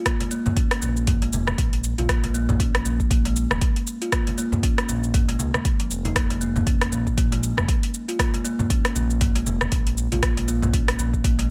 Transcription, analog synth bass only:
0, 0, Header, 1, 2, 480
1, 0, Start_track
1, 0, Key_signature, -5, "minor"
1, 0, Tempo, 508475
1, 53, Time_signature, 4, 2, 24, 8
1, 10860, End_track
2, 0, Start_track
2, 0, Title_t, "Analog synth bass"
2, 0, Program_c, 0, 38
2, 773, Note_on_c, 0, 34, 98
2, 1221, Note_off_c, 0, 34, 0
2, 1254, Note_on_c, 0, 29, 82
2, 1453, Note_off_c, 0, 29, 0
2, 1493, Note_on_c, 0, 34, 90
2, 1828, Note_off_c, 0, 34, 0
2, 1871, Note_on_c, 0, 34, 84
2, 2661, Note_off_c, 0, 34, 0
2, 2692, Note_on_c, 0, 34, 93
2, 3267, Note_off_c, 0, 34, 0
2, 3310, Note_on_c, 0, 29, 89
2, 3392, Note_off_c, 0, 29, 0
2, 4611, Note_on_c, 0, 34, 97
2, 5060, Note_off_c, 0, 34, 0
2, 5092, Note_on_c, 0, 37, 83
2, 5204, Note_off_c, 0, 37, 0
2, 5573, Note_on_c, 0, 29, 88
2, 6501, Note_off_c, 0, 29, 0
2, 6534, Note_on_c, 0, 34, 93
2, 7108, Note_off_c, 0, 34, 0
2, 7153, Note_on_c, 0, 29, 89
2, 7234, Note_off_c, 0, 29, 0
2, 8454, Note_on_c, 0, 34, 99
2, 8901, Note_off_c, 0, 34, 0
2, 8934, Note_on_c, 0, 29, 93
2, 9133, Note_off_c, 0, 29, 0
2, 9175, Note_on_c, 0, 34, 92
2, 9508, Note_off_c, 0, 34, 0
2, 9553, Note_on_c, 0, 34, 86
2, 10342, Note_off_c, 0, 34, 0
2, 10372, Note_on_c, 0, 34, 101
2, 10860, Note_off_c, 0, 34, 0
2, 10860, End_track
0, 0, End_of_file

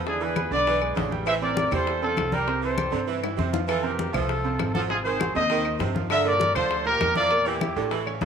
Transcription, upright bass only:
0, 0, Header, 1, 2, 480
1, 0, Start_track
1, 0, Tempo, 302267
1, 100, Time_signature, 4, 2, 24, 8
1, 13101, End_track
2, 0, Start_track
2, 0, Title_t, "Upright bass"
2, 0, Program_c, 0, 32
2, 0, Note_on_c, 0, 40, 95
2, 728, Note_off_c, 0, 40, 0
2, 807, Note_on_c, 0, 35, 91
2, 1483, Note_off_c, 0, 35, 0
2, 1526, Note_on_c, 0, 33, 92
2, 2645, Note_off_c, 0, 33, 0
2, 2728, Note_on_c, 0, 40, 94
2, 3403, Note_off_c, 0, 40, 0
2, 3453, Note_on_c, 0, 36, 97
2, 4568, Note_off_c, 0, 36, 0
2, 4650, Note_on_c, 0, 43, 91
2, 5323, Note_off_c, 0, 43, 0
2, 5368, Note_on_c, 0, 41, 98
2, 6485, Note_off_c, 0, 41, 0
2, 6574, Note_on_c, 0, 36, 94
2, 7245, Note_off_c, 0, 36, 0
2, 7294, Note_on_c, 0, 32, 97
2, 8408, Note_off_c, 0, 32, 0
2, 8497, Note_on_c, 0, 39, 99
2, 9166, Note_off_c, 0, 39, 0
2, 9204, Note_on_c, 0, 43, 98
2, 10323, Note_off_c, 0, 43, 0
2, 10414, Note_on_c, 0, 38, 95
2, 11085, Note_off_c, 0, 38, 0
2, 11130, Note_on_c, 0, 40, 97
2, 12246, Note_off_c, 0, 40, 0
2, 12325, Note_on_c, 0, 33, 94
2, 13001, Note_off_c, 0, 33, 0
2, 13046, Note_on_c, 0, 38, 105
2, 13101, Note_off_c, 0, 38, 0
2, 13101, End_track
0, 0, End_of_file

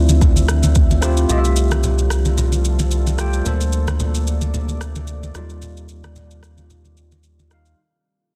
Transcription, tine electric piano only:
0, 0, Header, 1, 2, 480
1, 0, Start_track
1, 0, Tempo, 540541
1, 1150, Time_signature, 4, 2, 24, 8
1, 7417, End_track
2, 0, Start_track
2, 0, Title_t, "Tine electric piano"
2, 0, Program_c, 0, 4
2, 0, Control_c, 0, 64, 127
2, 0, Note_on_c, 0, 60, 90
2, 0, Note_on_c, 0, 64, 84
2, 0, Note_on_c, 0, 65, 86
2, 0, Note_on_c, 0, 74, 98
2, 898, Note_off_c, 0, 60, 0
2, 898, Note_on_c, 0, 60, 86
2, 908, Note_off_c, 0, 64, 0
2, 908, Note_on_c, 0, 64, 81
2, 917, Note_off_c, 0, 65, 0
2, 917, Note_on_c, 0, 65, 84
2, 927, Note_on_c, 0, 67, 97
2, 1101, Note_off_c, 0, 60, 0
2, 1106, Note_off_c, 0, 64, 0
2, 1110, Note_off_c, 0, 65, 0
2, 1115, Note_off_c, 0, 67, 0
2, 1139, Note_on_c, 0, 57, 87
2, 1148, Note_on_c, 0, 65, 82
2, 1157, Note_on_c, 0, 67, 80
2, 1163, Control_c, 0, 64, 0
2, 1167, Note_on_c, 0, 75, 80
2, 1168, Note_off_c, 0, 74, 0
2, 1222, Note_off_c, 0, 75, 0
2, 1225, Note_on_c, 0, 76, 98
2, 1327, Control_c, 0, 64, 127
2, 1917, Note_off_c, 0, 57, 0
2, 1922, Note_off_c, 0, 65, 0
2, 1926, Note_off_c, 0, 67, 0
2, 1960, Note_off_c, 0, 76, 0
2, 2818, Note_on_c, 0, 57, 86
2, 2828, Note_on_c, 0, 65, 83
2, 2837, Note_on_c, 0, 67, 80
2, 2847, Note_on_c, 0, 79, 99
2, 3021, Note_off_c, 0, 57, 0
2, 3026, Note_off_c, 0, 65, 0
2, 3030, Note_off_c, 0, 67, 0
2, 3035, Note_off_c, 0, 79, 0
2, 3057, Note_on_c, 0, 58, 86
2, 3067, Note_on_c, 0, 62, 80
2, 3077, Note_on_c, 0, 69, 80
2, 3081, Control_c, 0, 64, 0
2, 3086, Note_on_c, 0, 72, 97
2, 3215, Control_c, 0, 64, 127
2, 3836, Note_off_c, 0, 58, 0
2, 3841, Note_off_c, 0, 62, 0
2, 3846, Note_off_c, 0, 69, 0
2, 3851, Note_off_c, 0, 72, 0
2, 4738, Note_on_c, 0, 54, 75
2, 4747, Note_on_c, 0, 63, 86
2, 4757, Note_on_c, 0, 65, 86
2, 4760, Control_c, 0, 64, 0
2, 4766, Note_on_c, 0, 74, 103
2, 4796, Note_on_c, 0, 55, 96
2, 4807, Note_off_c, 0, 54, 0
2, 4899, Control_c, 0, 64, 127
2, 5521, Note_off_c, 0, 63, 0
2, 5526, Note_off_c, 0, 65, 0
2, 5531, Note_off_c, 0, 74, 0
2, 5545, Note_off_c, 0, 55, 0
2, 6659, Note_on_c, 0, 55, 89
2, 6668, Note_on_c, 0, 63, 76
2, 6678, Note_on_c, 0, 65, 78
2, 6688, Note_on_c, 0, 77, 90
2, 6861, Note_off_c, 0, 55, 0
2, 6866, Note_off_c, 0, 63, 0
2, 6870, Note_off_c, 0, 65, 0
2, 6875, Note_off_c, 0, 77, 0
2, 6921, Control_c, 0, 64, 0
2, 7417, End_track
0, 0, End_of_file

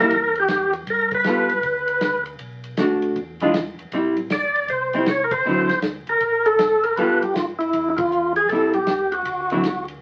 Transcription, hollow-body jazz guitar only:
0, 0, Header, 1, 2, 480
1, 0, Start_track
1, 0, Tempo, 380952
1, 1104, Time_signature, 4, 2, 24, 8
1, 12623, End_track
2, 0, Start_track
2, 0, Title_t, "Hollow-body jazz guitar"
2, 0, Program_c, 0, 26
2, 0, Note_on_c, 0, 55, 55
2, 0, Note_on_c, 0, 58, 63
2, 10, Note_on_c, 0, 64, 66
2, 135, Note_off_c, 0, 55, 0
2, 139, Note_off_c, 0, 58, 0
2, 144, Note_off_c, 0, 64, 0
2, 1583, Note_on_c, 0, 55, 45
2, 1593, Note_on_c, 0, 59, 49
2, 1593, Note_on_c, 0, 65, 49
2, 1593, Note_on_c, 0, 69, 50
2, 1863, Note_off_c, 0, 55, 0
2, 1868, Note_off_c, 0, 59, 0
2, 1868, Note_off_c, 0, 65, 0
2, 1868, Note_off_c, 0, 69, 0
2, 3511, Note_on_c, 0, 57, 47
2, 3520, Note_on_c, 0, 62, 51
2, 3528, Note_on_c, 0, 66, 50
2, 3987, Note_off_c, 0, 57, 0
2, 3991, Note_off_c, 0, 62, 0
2, 3995, Note_off_c, 0, 66, 0
2, 4302, Note_on_c, 0, 52, 54
2, 4311, Note_on_c, 0, 56, 63
2, 4312, Note_on_c, 0, 62, 63
2, 4321, Note_on_c, 0, 65, 67
2, 4450, Note_off_c, 0, 52, 0
2, 4454, Note_off_c, 0, 56, 0
2, 4455, Note_off_c, 0, 62, 0
2, 4459, Note_off_c, 0, 65, 0
2, 4957, Note_on_c, 0, 55, 50
2, 4968, Note_on_c, 0, 60, 48
2, 4969, Note_on_c, 0, 64, 46
2, 5231, Note_off_c, 0, 55, 0
2, 5236, Note_off_c, 0, 60, 0
2, 5236, Note_off_c, 0, 64, 0
2, 6225, Note_on_c, 0, 55, 56
2, 6233, Note_on_c, 0, 60, 63
2, 6243, Note_on_c, 0, 64, 67
2, 6372, Note_off_c, 0, 55, 0
2, 6376, Note_off_c, 0, 60, 0
2, 6380, Note_off_c, 0, 64, 0
2, 6869, Note_on_c, 0, 50, 46
2, 6879, Note_on_c, 0, 60, 52
2, 6881, Note_on_c, 0, 54, 54
2, 6886, Note_on_c, 0, 64, 56
2, 7147, Note_off_c, 0, 50, 0
2, 7152, Note_off_c, 0, 60, 0
2, 7153, Note_off_c, 0, 54, 0
2, 7156, Note_off_c, 0, 64, 0
2, 8797, Note_on_c, 0, 55, 63
2, 8798, Note_on_c, 0, 59, 59
2, 8806, Note_on_c, 0, 65, 65
2, 8807, Note_on_c, 0, 69, 67
2, 9071, Note_off_c, 0, 55, 0
2, 9072, Note_off_c, 0, 59, 0
2, 9076, Note_off_c, 0, 65, 0
2, 9077, Note_off_c, 0, 69, 0
2, 10729, Note_on_c, 0, 55, 46
2, 10739, Note_on_c, 0, 60, 56
2, 10744, Note_on_c, 0, 64, 54
2, 10998, Note_off_c, 0, 55, 0
2, 11003, Note_off_c, 0, 60, 0
2, 11005, Note_off_c, 0, 64, 0
2, 11987, Note_on_c, 0, 50, 53
2, 11995, Note_on_c, 0, 60, 56
2, 11997, Note_on_c, 0, 54, 55
2, 12003, Note_on_c, 0, 64, 59
2, 12134, Note_off_c, 0, 50, 0
2, 12138, Note_off_c, 0, 60, 0
2, 12139, Note_off_c, 0, 54, 0
2, 12142, Note_off_c, 0, 64, 0
2, 12623, End_track
0, 0, End_of_file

